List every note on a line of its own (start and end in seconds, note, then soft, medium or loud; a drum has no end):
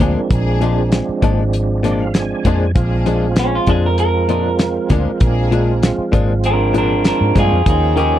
0.00 0.15 D2 medium
0.00 0.19 A#2 medium
0.00 2.72 F3 medium
0.00 0.19 F3 medium
0.00 2.72 G#3 medium
0.00 0.20 G#3 medium
0.00 0.16 A#3 medium
0.00 2.72 C4 medium
0.00 0.16 D4 medium
0.00 2.72 D4 medium
0.00 0.20 D4 loud
0.00 0.16 G#4 medium
0.00 0.90 A#4 medium
0.00 kick medium
0.00 closed hi-hat medium
0.31 1.00 A#1 loud
0.31 0.92 A#3 medium
0.31 0.92 D4 medium
0.31 0.92 G#4 loud
0.31 kick loud
0.31 closed hi-hat medium
0.61 0.80 A#2 medium
0.61 0.81 F3 medium
0.61 0.81 G#3 medium
0.61 0.81 D4 medium
0.61 closed hi-hat medium
0.92 snare loud
0.92 closed hi-hat medium
1.09 muted fingered electric bass stroke soft
1.22 2.32 G#1 medium
1.22 1.42 A#2 medium
1.22 1.42 F3 loud
1.22 1.43 G#3 loud
1.22 1.43 D4 loud
1.22 kick medium
1.22 closed hi-hat medium
1.53 closed hi-hat medium
1.83 2.03 A#2 medium
1.83 2.03 F3 medium
1.83 2.04 G#3 medium
1.83 2.04 D4 medium
1.83 1.99 D5 medium
1.83 snare soft
1.83 closed hi-hat medium
2.00 2.13 F5 medium
2.14 2.71 G#5 medium
2.14 snare medium
2.14 closed hi-hat medium
2.44 2.72 F2 medium
2.44 2.65 A#2 medium
2.44 2.65 F3 medium
2.44 2.65 G#3 medium
2.44 2.61 A#3 medium
2.44 2.61 D4 medium
2.44 2.66 D4 loud
2.44 2.62 G#4 medium
2.44 kick medium
2.44 closed hi-hat medium
2.75 3.58 A#1 loud
2.75 7.62 F3 medium
2.75 7.62 G#3 medium
2.75 3.37 A#3 medium
2.75 7.62 C4 medium
2.75 3.37 D4 medium
2.75 7.62 F4 medium
2.75 3.38 G#4 medium
2.75 kick loud
2.75 closed hi-hat medium
3.06 3.26 A#2 medium
3.06 3.26 F3 medium
3.06 3.26 G#3 loud
3.06 3.27 D4 medium
3.06 closed hi-hat medium
3.36 3.54 C#4 medium
3.36 snare loud
3.36 closed hi-hat medium
3.55 3.70 F4 medium
3.67 4.77 F2 loud
3.67 3.87 A#2 medium
3.67 3.87 F3 medium
3.67 3.88 G#3 medium
3.67 3.88 D4 medium
3.67 3.85 G#4 medium
3.67 kick medium
3.67 closed hi-hat medium
3.86 3.99 A#4 medium
3.98 5.79 A#4 medium
3.98 closed hi-hat medium
4.29 4.48 A#2 medium
4.29 4.49 F3 medium
4.29 4.49 G#3 medium
4.29 4.49 D4 medium
4.29 closed hi-hat medium
4.59 snare medium
4.59 closed hi-hat medium
4.89 5.05 D2 medium
4.89 5.10 A#2 medium
4.89 5.10 F3 medium
4.89 5.10 G#3 medium
4.89 5.07 A#3 medium
4.89 5.07 D4 medium
4.89 5.11 D4 medium
4.89 5.06 G#4 medium
4.89 kick medium
4.89 snare soft
4.89 closed hi-hat medium
5.20 5.91 A#1 loud
5.20 5.82 A#3 medium
5.20 5.83 D4 medium
5.20 5.83 G#4 loud
5.20 kick loud
5.20 closed hi-hat medium
5.51 5.71 A#2 medium
5.51 5.71 F3 medium
5.51 5.72 G#3 medium
5.51 5.72 D4 medium
5.51 closed hi-hat medium
5.83 snare loud
5.83 closed hi-hat medium
5.98 muted fingered electric bass stroke soft
6.12 7.10 G#1 medium
6.12 6.32 A#2 loud
6.12 6.32 F3 medium
6.12 6.33 G#3 loud
6.12 6.33 D4 loud
6.12 kick medium
6.12 closed hi-hat medium
6.44 6.75 D4 medium
6.44 6.75 A#4 medium
6.44 closed hi-hat medium
6.74 6.93 A#2 medium
6.74 6.94 F3 medium
6.74 6.94 G#3 medium
6.74 6.94 D4 medium
6.74 closed hi-hat medium
6.78 7.05 D4 medium
6.78 7.06 A#4 medium
7.04 7.35 D4 medium
7.04 7.36 A#4 medium
7.04 snare loud
7.04 closed hi-hat medium
7.21 7.34 G#2 medium
7.35 7.51 G2 medium
7.35 7.55 A#2 medium
7.35 7.55 F3 medium
7.35 7.56 G#3 medium
7.35 7.52 A#3 medium
7.35 7.52 D4 medium
7.35 7.56 D4 medium
7.35 7.66 F4 medium
7.35 7.52 G#4 medium
7.35 kick medium
7.35 snare soft
7.35 closed hi-hat medium
7.39 7.67 G#4 medium
7.52 7.65 F2 medium
7.66 8.19 D#2 medium
7.66 8.19 D#3 medium
7.66 8.19 F3 medium
7.66 8.19 A#3 medium
7.66 8.19 C#4 medium
7.66 8.19 D#4 medium
7.66 7.96 D#4 medium
7.66 7.97 G#4 medium
7.66 8.19 G5 medium
7.66 kick loud
7.66 closed hi-hat medium
7.96 8.16 D#3 medium
7.96 8.16 A#3 medium
7.96 8.17 C#4 medium
7.96 8.19 D#4 medium
7.96 8.17 G4 medium
7.96 8.19 G#4 medium
7.96 closed hi-hat medium